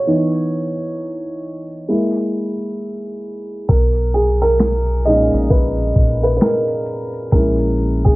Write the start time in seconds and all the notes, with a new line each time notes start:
Already playing: C#5
0.07 E3 B3 D#4
1.89 G#3 A#3 E4
3.68 B1 A#4, kick, closed hi-hat
3.95 closed hi-hat
4.14 G#4, closed hi-hat
4.42 A#4, closed hi-hat
4.59 finger snap, snare, closed hi-hat
4.86 closed hi-hat
5.04 A#2 G#3 C#4 D#4 D#5, closed hi-hat
5.32 A#1, closed hi-hat
5.50 B4, kick, closed hi-hat
5.77 closed hi-hat
5.96 A#1, kick, closed hi-hat
6.23 B4, closed hi-hat
6.37 B4
6.41 A#4, finger snap, snare, closed hi-hat
6.68 closed hi-hat
6.86 closed hi-hat
7.13 closed hi-hat
7.31 A#1 G#3 C#4 E4 A#4, kick, closed hi-hat
7.58 closed hi-hat
7.78 closed hi-hat
8.05 G#4, kick, snare, closed hi-hat